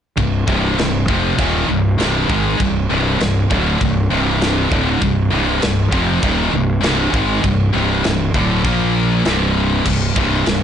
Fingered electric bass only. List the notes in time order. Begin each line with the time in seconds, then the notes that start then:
0.17 C1
0.48 C1
0.78 C1
1.09 F1
1.38 D#1
1.68 C1
2.00 C1
2.29 G#1
2.60 C1
2.92 C1
3.21 C1
3.51 D1
3.81 C1
4.12 C1
4.71 D1
5.02 C1
5.33 C1
5.63 C1
5.92 F1
6.23 D#1
6.53 C1
6.83 C1
7.13 G#1
7.44 C1
7.75 C1
8.06 C1
8.34 D1
8.64 A#1
9.26 C1
9.86 C1
10.16 C1
10.47 C1